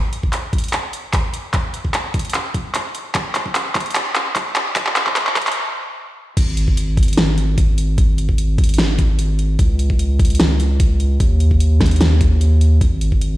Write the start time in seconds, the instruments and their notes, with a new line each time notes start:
0.13 closed hi-hat
0.23 kick
0.33 clap, closed hi-hat
0.53 kick, closed hi-hat
0.58 closed hi-hat
0.64 closed hi-hat
0.68 closed hi-hat
0.73 clap, closed hi-hat
0.93 closed hi-hat
1.13 kick, clap, closed hi-hat
1.34 closed hi-hat
1.54 kick, clap, closed hi-hat
1.74 closed hi-hat
1.85 kick
1.94 clap, closed hi-hat
2.14 kick, closed hi-hat
2.19 closed hi-hat
2.25 closed hi-hat
2.30 closed hi-hat
2.34 clap, closed hi-hat
2.54 kick, closed hi-hat
2.75 clap, closed hi-hat
2.95 closed hi-hat
3.15 kick, clap, closed hi-hat
3.35 clap, closed hi-hat
3.46 kick
3.55 clap, closed hi-hat
3.75 kick, clap, closed hi-hat
3.80 closed hi-hat
3.86 closed hi-hat
3.91 closed hi-hat
3.95 clap, closed hi-hat
4.15 clap, closed hi-hat
4.36 kick, clap, closed hi-hat
4.56 clap, closed hi-hat
4.76 kick, clap, closed hi-hat
4.87 clap
4.96 clap, closed hi-hat
5.07 kick, clap
5.16 clap, closed hi-hat
5.27 clap
5.36 kick, clap, closed hi-hat
5.42 closed hi-hat
5.47 clap, closed hi-hat
5.52 closed hi-hat
6.37 sub bass G#1, kick, closed hi-hat, crash
6.57 closed hi-hat
6.68 kick
6.77 closed hi-hat
6.97 kick, closed hi-hat
7.03 closed hi-hat
7.08 closed hi-hat
7.13 closed hi-hat
7.18 snare, closed hi-hat
7.38 closed hi-hat
7.58 kick, closed hi-hat
7.78 closed hi-hat
7.98 kick, closed hi-hat
8.18 closed hi-hat
8.29 kick
8.38 closed hi-hat
8.58 kick, closed hi-hat
8.64 closed hi-hat
8.69 closed hi-hat
8.74 closed hi-hat
8.78 snare, closed hi-hat
8.99 kick, closed hi-hat
9.19 closed hi-hat
9.39 closed hi-hat
9.59 sub bass C#2, kick, closed hi-hat
9.79 closed hi-hat
9.90 kick
9.99 closed hi-hat
10.19 kick, closed hi-hat
10.25 closed hi-hat
10.30 closed hi-hat
10.35 closed hi-hat
10.40 snare, closed hi-hat
10.60 closed hi-hat
10.80 kick, closed hi-hat
11.00 closed hi-hat
11.20 sub bass D#2, kick, closed hi-hat
11.40 closed hi-hat
11.51 kick
11.60 closed hi-hat
11.81 kick, snare, closed hi-hat
11.86 closed hi-hat
11.91 closed hi-hat
11.96 closed hi-hat
12.01 snare, closed hi-hat
12.21 kick, closed hi-hat
12.41 closed hi-hat
12.61 closed hi-hat
12.81 sub bass G#1, kick, closed hi-hat
13.01 closed hi-hat
13.12 kick
13.21 closed hi-hat